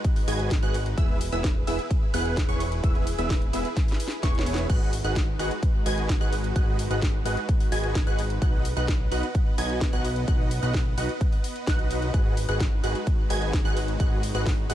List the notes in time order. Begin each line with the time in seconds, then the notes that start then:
Already playing: G#3 D#4 F#4 B4
0.04 kick, closed hi-hat, ride
0.16 open hi-hat
0.28 G#1 F#4 G#4 B4 D#5 G#5 G#6, open hi-hat, ride
0.39 closed hi-hat
0.51 kick, snare, closed hi-hat, ride
0.63 G#1 F#4 G#4 B4 D#5 F#5 F#6, closed hi-hat
0.74 open hi-hat, ride
0.86 closed hi-hat
0.97 E1 B3 E4 G#4 B4 E5 E6, kick, closed hi-hat, ride
1.21 open hi-hat, ride
1.32 E1 B3 E4 G#4 B4 E5 E6, closed hi-hat
1.44 kick, snare, closed hi-hat, ride
1.67 E1 B3 E4 G#4 B4 E5 E6, open hi-hat, ride
1.79 closed hi-hat
1.91 kick, closed hi-hat, ride
2.14 E1 B3 E4 G#4 B4 F#5 F#6, open hi-hat, ride
2.25 closed hi-hat
2.37 kick, snare, closed hi-hat, ride
2.49 E1 B3 E4 G#4 B4 C#5 C#6, closed hi-hat
2.60 open hi-hat, ride
2.72 closed hi-hat
2.84 E1 B3 E4 G#4 B4 E5 E6, kick, closed hi-hat, ride
2.95 closed hi-hat
3.07 open hi-hat, ride
3.18 E1 B3 E4 G#4 B4 E5 E6, closed hi-hat
3.30 kick, snare, open hi-hat, ride
3.42 closed hi-hat
3.53 E1 B3 E4 G#4 B4 E5 E6, open hi-hat, ride
3.65 closed hi-hat
3.77 kick, snare, closed hi-hat, ride
3.88 snare, open hi-hat
4.00 open hi-hat, ride
4.08 snare, closed hi-hat
4.23 E1 B3 E4 G#4 B4 C#5 C#6, kick, snare, closed hi-hat, ride
4.35 snare, closed hi-hat
4.46 open hi-hat, ride
4.54 snare, closed hi-hat
4.70 G#1 G#3 D#4 F#4 G#4 B4 D#5 F#5 F#6, kick, closed hi-hat, crash, ride
4.93 open hi-hat, ride
5.04 G#1 F#4 G#4 B4 D#5 F#5 F#6, closed hi-hat
5.16 kick, snare, closed hi-hat, ride
5.39 G#1 F#4 G#4 B4 D#5 F#5 F#6, open hi-hat, ride
5.51 closed hi-hat
5.63 kick, closed hi-hat, ride
5.86 G#1 F#4 G#4 B4 D#5 G#5 G#6, open hi-hat, ride
5.98 closed hi-hat
6.09 kick, snare, closed hi-hat, ride
6.21 G#1 F#4 G#4 B4 D#5 F#5 F#6, closed hi-hat
6.33 open hi-hat, ride
6.44 closed hi-hat
6.56 G#1 F#4 G#4 B4 D#5 F#5 F#6, kick, closed hi-hat, ride
6.79 open hi-hat, ride
6.91 G#1 F#4 G#4 B4 D#5 F#5 F#6, closed hi-hat
7.02 kick, snare, open hi-hat, ride
7.25 G#1 F#4 G#4 B4 D#5 F#5 F#6, open hi-hat, ride
7.37 closed hi-hat
7.49 kick, closed hi-hat, ride
7.60 open hi-hat
7.72 G#1 F#4 G#4 B4 D#5 G#5 G#6, open hi-hat, ride
7.84 closed hi-hat
7.95 kick, snare, closed hi-hat, ride
8.07 G#1 F#4 G#4 B4 D#5 F#5 F#6, closed hi-hat
8.19 open hi-hat, ride
8.30 closed hi-hat
8.42 B1 B3 D#4 F#4 B4 D#5 F#5 F#6, kick, closed hi-hat, ride
8.65 open hi-hat, ride
8.77 B1 D#4 F#4 B4 D#5 F#5 F#6, closed hi-hat
8.88 kick, snare, closed hi-hat, ride
9.12 B1 D#4 F#4 B4 D#5 F#5 F#6, open hi-hat, ride
9.23 closed hi-hat
9.35 kick, closed hi-hat, ride
9.58 B1 D#4 F#4 B4 D#5 G#5 G#6, open hi-hat, ride
9.70 closed hi-hat
9.81 kick, snare, closed hi-hat, ride
9.93 B1 D#4 F#4 B4 D#5 F#5 F#6, closed hi-hat
10.05 open hi-hat, ride
10.16 closed hi-hat
10.28 B1 D#4 F#4 B4 D#5 F#5 F#6, kick, closed hi-hat, ride
10.51 open hi-hat, ride
10.63 B1 D#4 F#4 B4 D#5 F#5 F#6, closed hi-hat
10.74 kick, snare, open hi-hat, ride
10.98 B1 D#4 F#4 B4 D#5 F#5 F#6, open hi-hat, ride
11.09 closed hi-hat
11.21 kick, closed hi-hat, ride
11.32 open hi-hat
11.44 open hi-hat, ride
11.56 closed hi-hat
11.67 B1 D#4 F#4 B4 D#5 F#5 F#6, kick, snare, closed hi-hat, ride
11.79 closed hi-hat
11.91 open hi-hat, ride
12.02 closed hi-hat
12.14 G#1 G#3 D#4 F#4 G#4 B4 D#5 F#5 F#6, kick, closed hi-hat, ride
12.37 open hi-hat, ride
12.49 G#1 F#4 G#4 B4 D#5 F#5 F#6, closed hi-hat
12.60 kick, snare, closed hi-hat, ride
12.84 G#1 F#4 G#4 B4 D#5 F#5 F#6, open hi-hat, ride
12.95 closed hi-hat
13.07 kick, closed hi-hat, ride
13.30 G#1 F#4 G#4 B4 D#5 G#5 G#6, open hi-hat, ride
13.42 closed hi-hat
13.53 kick, snare, closed hi-hat, ride
13.65 G#1 F#4 G#4 B4 D#5 F#5 F#6, closed hi-hat
13.77 open hi-hat, ride
13.88 closed hi-hat
14.00 G#1 F#4 G#4 B4 D#5 F#5 F#6, kick, closed hi-hat, ride
14.23 open hi-hat, ride
14.35 G#1 F#4 G#4 B4 D#5 F#5 F#6, closed hi-hat
14.46 kick, snare, open hi-hat, ride
14.70 G#1 F#4 G#4 B4 D#5 F#5 F#6, open hi-hat, ride